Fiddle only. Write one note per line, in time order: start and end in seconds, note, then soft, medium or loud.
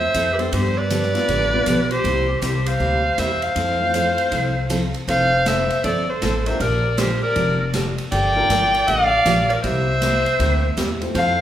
0.00 0.36 E5 loud
0.34 0.41 B4 medium
0.39 0.53 C5 medium
0.53 0.79 C5 medium
0.77 1.91 D5 loud
1.92 2.39 C5 loud
2.43 2.69 C5 medium
2.67 3.20 F5 loud
3.19 3.45 E5 loud
3.43 4.95 F5 loud
5.08 5.48 F5 loud
5.47 5.86 E5 loud
5.84 6.11 D5 loud
6.10 6.48 C5 medium
6.46 6.60 E5 medium
6.61 7.00 D5 medium
6.98 7.22 C5 medium
7.23 7.71 D5 medium
8.11 8.89 G5 loud
8.88 9.05 F#5 loud
9.05 9.51 F5 loud
9.50 9.63 D5 medium
9.63 10.97 E5 loud
11.15 11.41 F5 loud